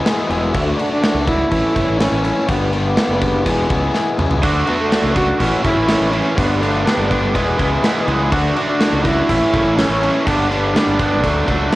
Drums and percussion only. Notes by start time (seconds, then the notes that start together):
0.06 snare, crash
0.30 crash
0.55 kick, crash
0.79 crash
1.03 snare, crash
1.27 kick, crash
1.51 kick, crash
1.76 kick, crash
2.00 snare, crash
2.25 crash
2.48 kick, crash
2.73 crash
2.97 snare, crash
3.21 kick, crash
3.46 kick, crash
3.70 kick, crash
3.94 snare
4.19 mid tom
4.31 floor tom
4.43 kick, crash
4.67 crash
4.92 snare, crash
5.16 kick, crash
5.40 kick, crash
5.65 kick, crash
5.88 snare, crash
6.13 crash
6.38 kick, crash
6.62 crash
6.87 snare, crash
7.11 kick, crash
7.35 kick, crash
7.59 kick, crash
7.84 snare, crash
8.08 crash
8.32 kick, crash
8.56 crash
8.80 snare, crash
9.05 kick, crash
9.29 kick, crash
9.54 kick, crash
9.79 snare, crash
10.03 crash
10.27 kick, crash
10.52 crash
10.76 snare, crash
11.00 kick, crash
11.24 kick, crash
11.48 kick, crash